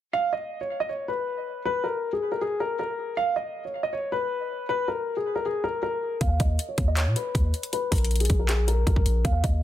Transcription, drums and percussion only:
6.21 kick, closed hi-hat
6.40 kick, closed hi-hat
6.59 closed hi-hat
6.78 kick, closed hi-hat
6.97 clap, closed hi-hat
7.16 closed hi-hat
7.35 kick, closed hi-hat
7.54 closed hi-hat
7.63 closed hi-hat
7.73 closed hi-hat
7.92 kick, closed hi-hat, open hi-hat
7.98 closed hi-hat
8.04 closed hi-hat
8.11 closed hi-hat
8.16 closed hi-hat
8.20 closed hi-hat
8.25 closed hi-hat
8.30 kick, closed hi-hat
8.49 clap, closed hi-hat
8.68 closed hi-hat
8.87 kick, closed hi-hat
8.96 kick
9.06 closed hi-hat
9.25 kick, closed hi-hat
9.44 kick, closed hi-hat

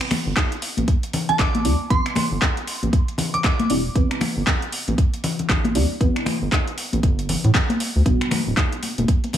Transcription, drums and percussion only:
0.01 finger snap, closed hi-hat
0.11 finger snap, open hi-hat, high conga, low conga
0.37 kick, clap, closed hi-hat
0.52 closed hi-hat
0.62 open hi-hat
0.77 closed hi-hat, high conga
0.88 kick, closed hi-hat
1.03 closed hi-hat
1.13 open hi-hat, low conga
1.29 closed hi-hat, low conga
1.39 kick, clap, closed hi-hat
1.55 closed hi-hat, high conga
1.65 open hi-hat
1.90 kick, closed hi-hat
2.06 finger snap, closed hi-hat
2.15 finger snap, open hi-hat, high conga, low conga
2.42 kick, clap, closed hi-hat
2.57 closed hi-hat
2.67 open hi-hat
2.83 closed hi-hat, high conga
2.93 kick, closed hi-hat
3.08 closed hi-hat
3.18 open hi-hat, low conga
3.34 closed hi-hat, low conga
3.44 kick, clap, closed hi-hat
3.59 closed hi-hat, high conga
3.70 open hi-hat
3.95 kick, closed hi-hat
4.11 finger snap, closed hi-hat
4.21 finger snap, open hi-hat, high conga, low conga
4.47 kick, clap, closed hi-hat
4.62 closed hi-hat
4.72 open hi-hat
4.88 closed hi-hat, high conga
4.98 kick, closed hi-hat
5.14 closed hi-hat
5.24 open hi-hat, low conga
5.39 closed hi-hat, low conga
5.49 kick, clap, closed hi-hat
5.64 closed hi-hat, high conga
5.75 open hi-hat
6.01 kick, closed hi-hat
6.16 finger snap, closed hi-hat
6.26 finger snap, open hi-hat, high conga, low conga
6.52 kick, clap, closed hi-hat
6.67 closed hi-hat
6.78 open hi-hat
6.93 closed hi-hat, high conga
7.03 kick, closed hi-hat
7.19 closed hi-hat
7.29 open hi-hat, low conga
7.44 closed hi-hat, low conga
7.54 kick, clap, closed hi-hat
7.69 closed hi-hat, high conga
7.80 open hi-hat
8.06 kick, closed hi-hat
8.21 finger snap, closed hi-hat
8.31 finger snap, open hi-hat, high conga, low conga
8.57 kick, clap, closed hi-hat
8.72 closed hi-hat
8.83 open hi-hat, muted conga
8.98 closed hi-hat, high conga
9.08 kick, closed hi-hat
9.24 closed hi-hat, muted conga
9.33 open hi-hat, muted conga, low conga

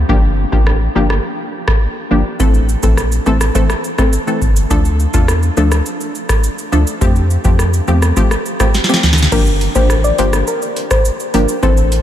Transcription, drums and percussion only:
0.09 kick
0.52 kick
0.67 cross-stick
1.10 cross-stick
1.68 kick, cross-stick
2.40 kick, shaker
2.54 shaker
2.69 shaker
2.83 kick, shaker
2.97 cross-stick, shaker
3.12 shaker
3.26 shaker
3.41 cross-stick, shaker
3.55 kick, shaker
3.70 cross-stick, shaker
3.84 shaker
3.98 kick, cross-stick, shaker
4.13 shaker
4.28 shaker
4.42 kick, shaker
4.56 shaker
4.71 kick, shaker
4.85 shaker
5.00 shaker
5.14 kick, shaker
5.28 cross-stick, shaker
5.43 shaker
5.57 shaker
5.72 cross-stick, shaker
5.86 shaker
6.01 shaker
6.15 shaker
6.29 kick, cross-stick, shaker
6.44 shaker
6.58 shaker
6.73 shaker
6.87 shaker
7.01 kick, shaker
7.16 shaker
7.30 shaker
7.44 kick, shaker
7.59 cross-stick, shaker
7.73 shaker
7.88 shaker
8.02 cross-stick, shaker
8.17 kick, shaker
8.31 cross-stick, shaker
8.46 shaker
8.60 kick, cross-stick, shaker
8.74 snare, shaker
8.84 snare
8.89 shaker
8.94 snare
9.03 snare, shaker
9.13 snare
9.18 shaker
9.23 snare
9.32 kick, crash, shaker
9.46 shaker
9.61 closed hi-hat, shaker
9.75 kick, shaker
9.90 cross-stick, shaker
10.04 shaker
10.18 closed hi-hat, shaker
10.33 cross-stick, shaker
10.47 shaker
10.62 shaker
10.76 closed hi-hat, shaker
10.91 kick, cross-stick, shaker
11.05 shaker
11.20 shaker
11.34 closed hi-hat, shaker
11.48 shaker
11.63 kick, shaker
11.77 shaker
11.92 closed hi-hat, shaker

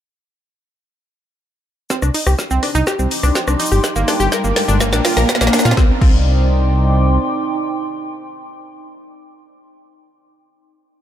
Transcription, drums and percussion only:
1.90 kick, snare, shaker
2.02 cross-stick, shaker
2.14 open hi-hat, shaker
2.27 cross-stick, shaker
2.39 kick, snare, shaker
2.51 shaker
2.63 cross-stick, open hi-hat
2.75 shaker
2.87 kick, cross-stick, snare, shaker
2.99 shaker
3.11 open hi-hat, shaker
3.23 cross-stick, shaker
3.35 kick, snare, shaker
3.48 cross-stick, shaker
3.60 open hi-hat, shaker
3.66 shaker
3.72 shaker
3.84 kick, snare, shaker
3.96 shaker
4.08 snare, open hi-hat, shaker
4.20 shaker
4.32 kick, snare, shaker
4.44 shaker
4.56 snare, open hi-hat
4.68 shaker
4.80 kick, snare, shaker
4.93 snare, shaker
5.05 snare, open hi-hat, shaker
5.17 snare, shaker
5.29 kick, snare, shaker
5.35 snare
5.41 snare, shaker
5.47 snare
5.53 snare, open hi-hat, shaker
5.59 snare, shaker
5.65 snare, shaker
5.71 snare
5.77 kick, snare
6.01 kick, crash

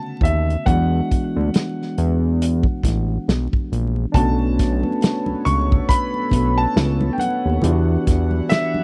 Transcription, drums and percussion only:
0.21 kick, closed hi-hat
0.50 closed hi-hat
0.67 kick, closed hi-hat
1.11 kick, closed hi-hat
1.54 snare, closed hi-hat
1.82 snare
1.98 closed hi-hat
2.42 closed hi-hat
2.63 kick
2.83 kick, snare, closed hi-hat
3.29 snare, closed hi-hat
3.53 kick
3.73 closed hi-hat
4.14 kick, closed hi-hat, muted conga, low conga
4.39 muted conga
4.59 kick, snare, closed hi-hat
4.83 high conga
5.01 snare, closed hi-hat, muted conga
5.26 muted conga, high conga
5.46 closed hi-hat, low conga
5.72 kick
5.89 kick, closed hi-hat
6.14 muted conga
6.31 kick, closed hi-hat, high conga
6.74 snare, closed hi-hat, muted conga
7.01 muted conga, high conga
7.18 closed hi-hat, high conga
7.62 closed hi-hat, muted conga, low conga
8.07 kick, snare, closed hi-hat
8.31 high conga
8.49 snare, closed hi-hat, muted conga
8.74 muted conga, high conga

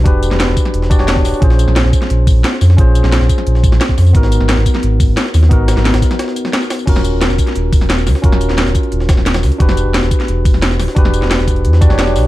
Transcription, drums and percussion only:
0.06 kick, closed hi-hat
0.23 closed hi-hat, tambourine
0.31 snare
0.40 snare, closed hi-hat
0.48 snare
0.57 kick, closed hi-hat, tambourine
0.65 snare, closed hi-hat
0.74 closed hi-hat
0.82 snare
0.91 kick, closed hi-hat, tambourine
0.99 snare
1.08 snare, closed hi-hat
1.16 kick, snare
1.25 snare, closed hi-hat, open hi-hat, tambourine
1.34 tambourine
1.42 kick, closed hi-hat
1.50 snare
1.59 closed hi-hat, tambourine
1.68 snare
1.76 snare, closed hi-hat
1.85 snare
1.93 kick, closed hi-hat, tambourine
2.02 snare, closed hi-hat
2.10 closed hi-hat
2.27 kick, closed hi-hat, open hi-hat, tambourine
2.44 snare, closed hi-hat
2.53 snare
2.61 snare, closed hi-hat, open hi-hat, tambourine
2.70 snare
2.78 kick, closed hi-hat
2.95 closed hi-hat, tambourine
3.04 snare
3.12 snare, closed hi-hat
3.21 snare
3.29 kick, closed hi-hat, tambourine
3.38 snare, closed hi-hat
3.47 closed hi-hat
3.55 snare
3.64 kick, closed hi-hat, tambourine
3.72 snare
3.81 snare, closed hi-hat
3.89 kick, snare
3.98 snare, closed hi-hat, open hi-hat, tambourine
4.06 tambourine
4.15 kick, closed hi-hat
4.23 snare
4.32 closed hi-hat, tambourine
4.41 snare
4.49 snare, closed hi-hat
4.57 snare
4.66 kick, closed hi-hat, tambourine
4.74 snare, closed hi-hat
4.83 closed hi-hat
5.00 kick, closed hi-hat, open hi-hat, tambourine
5.17 snare, closed hi-hat
5.26 snare
5.34 snare, closed hi-hat, open hi-hat, tambourine
5.43 snare
5.51 kick, closed hi-hat
5.68 snare, closed hi-hat, tambourine
5.77 snare
5.85 snare, closed hi-hat
5.94 snare, closed hi-hat
6.02 kick, snare, closed hi-hat, tambourine
6.11 snare, closed hi-hat
6.19 snare, closed hi-hat
6.28 snare
6.36 closed hi-hat, tambourine
6.45 snare
6.53 snare, closed hi-hat
6.62 snare, tambourine
6.70 snare, closed hi-hat, open hi-hat, tambourine
6.79 tambourine
6.87 kick, closed hi-hat, crash
6.96 snare
7.04 closed hi-hat, tambourine
7.21 snare, closed hi-hat
7.30 snare, tambourine
7.38 kick, closed hi-hat, tambourine
7.47 snare, closed hi-hat
7.55 closed hi-hat
7.72 kick, closed hi-hat, open hi-hat, tambourine
7.81 snare
7.90 snare, closed hi-hat
7.98 snare, tambourine
8.07 snare, closed hi-hat, open hi-hat, tambourine
8.15 snare
8.24 kick, closed hi-hat
8.32 snare
8.41 closed hi-hat, tambourine
8.49 snare
8.58 snare, closed hi-hat
8.66 snare, tambourine
8.75 kick, closed hi-hat, tambourine
8.83 closed hi-hat
8.92 closed hi-hat
9.00 snare
9.09 kick, snare, closed hi-hat, tambourine
9.17 snare
9.26 snare, closed hi-hat
9.34 snare, closed hi-hat, tambourine
9.43 snare, open hi-hat, tambourine
9.52 closed hi-hat
9.60 kick, closed hi-hat
9.69 snare
9.77 closed hi-hat, tambourine
9.94 snare, closed hi-hat
10.03 snare, tambourine
10.11 kick, closed hi-hat, tambourine
10.20 snare, closed hi-hat
10.28 closed hi-hat
10.45 kick, closed hi-hat, open hi-hat, tambourine
10.54 snare
10.62 snare, closed hi-hat
10.71 snare, tambourine
10.79 snare, closed hi-hat, open hi-hat, tambourine
10.88 snare
10.96 kick, closed hi-hat
11.05 snare
11.14 closed hi-hat, tambourine
11.22 snare
11.31 snare, closed hi-hat
11.39 snare, tambourine
11.48 kick, closed hi-hat, tambourine
11.56 closed hi-hat
11.65 closed hi-hat
11.73 snare
11.82 kick, closed hi-hat, tambourine
11.90 snare
11.99 snare, closed hi-hat
12.07 snare, tambourine
12.16 snare, closed hi-hat, open hi-hat, tambourine

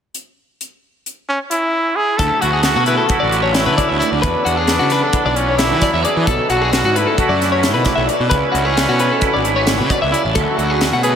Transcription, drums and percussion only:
0.15 closed hi-hat
0.61 closed hi-hat
1.06 closed hi-hat
1.51 closed hi-hat
2.19 kick, closed hi-hat
2.42 closed hi-hat
2.63 snare, closed hi-hat
2.86 closed hi-hat
3.09 kick, closed hi-hat
3.32 closed hi-hat
3.54 snare, closed hi-hat
3.78 kick, closed hi-hat
4.02 closed hi-hat
4.23 kick, closed hi-hat
4.46 closed hi-hat
4.67 snare, closed hi-hat
4.90 snare, closed hi-hat
5.13 kick, closed hi-hat
5.36 closed hi-hat
5.59 snare, closed hi-hat
5.81 kick, snare, closed hi-hat
6.05 closed hi-hat
6.27 kick, closed hi-hat
6.50 closed hi-hat
6.73 snare, closed hi-hat
6.96 closed hi-hat
7.18 kick, closed hi-hat
7.42 snare, closed hi-hat
7.63 snare, closed hi-hat
7.85 kick, snare, closed hi-hat
8.09 closed hi-hat
8.31 kick, closed hi-hat
8.55 closed hi-hat
8.77 snare, closed hi-hat
8.99 closed hi-hat
9.21 kick, closed hi-hat
9.45 closed hi-hat
9.67 snare, closed hi-hat
9.90 kick, closed hi-hat
10.14 closed hi-hat
10.35 kick, closed hi-hat
10.59 closed hi-hat
10.81 snare, closed hi-hat
11.03 closed hi-hat

